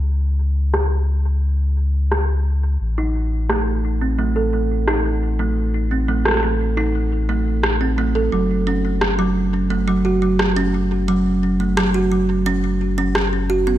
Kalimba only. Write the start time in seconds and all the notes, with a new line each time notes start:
2.98 D#4
3.50 A3
4.01 C4
4.19 A3
4.36 A4
4.53 A3
4.88 D#4
5.39 A3
5.91 C4
6.08 A3
6.26 A4
6.43 A3
6.77 D#4
7.29 A3
7.81 C4
7.98 A3
8.15 A4
8.32 F#3
8.67 C#4
9.19 F#3
9.70 A3
9.88 F#3
10.05 F#4
10.22 F#3
10.56 C#4
11.08 F#3
11.60 A3
11.77 F#3
11.94 F#4
12.12 F#3
12.46 C#4
12.98 C#4
13.50 F#4
13.67 B3